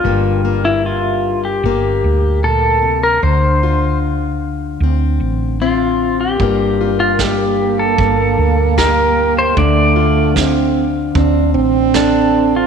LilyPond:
<<
  \new Staff \with { instrumentName = "Pedal steel guitar" } { \time 4/4 \key g \minor \tempo 4 = 76 f'8. e'16 f'8. g'4~ g'16 a'8. bes'16 | c''4 r2 f'8. g'16~ | g'8. f'16 g'8. a'4~ a'16 bes'8. c''16 | d''4 r2 d'8. f'16 | }
  \new Staff \with { instrumentName = "French horn" } { \time 4/4 \key g \minor r1 | r1 | bes1 | a4 c'8 r8 d'8 c'4. | }
  \new Staff \with { instrumentName = "Steel-string acoustic guitar" } { \time 4/4 \key g \minor << { <g bes d'>8 bes4. bes2 | r8 f'4. c'4 c'4 | <g bes f'>8 f'4. bes4 g'4 | r8 f'4. c'4 a'4 | } \\ { g,2. bes,8 c8 | d1 | g,1 | d1 | } >> }
  \new Staff \with { instrumentName = "Fretless electric bass" } { \clef bass \time 4/4 \key g \minor g,,2 g,,8 d,4. | d,2 d,8 a,,4. | g,,2 g,,8 d,4. | d,2 d,8 a,,4. | }
  \new DrumStaff \with { instrumentName = "Drums" } \drummode { \time 4/4 r4 r4 r4 r4 | r4 r4 r4 r4 | bd4 <bd sn>4 bd4 <bd sn>4 | bd4 <bd sn>4 bd4 <bd sn>4 | }
>>